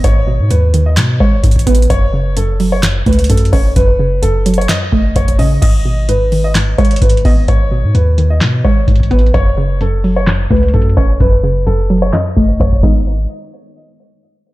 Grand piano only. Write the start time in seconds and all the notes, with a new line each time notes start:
0.04 C#5
0.51 B4
0.86 D#5
1.20 C#5
1.67 B4
1.90 C#5
2.37 A4
2.72 C#5
3.07 B4
3.29 A4
3.53 C#5
3.76 B4
4.22 A4
4.58 C#5
4.69 D#5
5.16 C#5
5.39 D#5
5.62 D#5
6.09 B4
6.44 D#5
6.78 C#5
7.02 B4
7.25 D#5
7.48 C#5
7.95 B4
8.30 D#5
8.65 C#5
9.11 B4
9.34 C#5
9.81 A4
10.16 C#5
10.51 B4
10.74 A4
10.97 C#5
11.21 B4
11.66 A4
12.02 C#5
12.13 D#5
12.61 C#5
12.83 D#5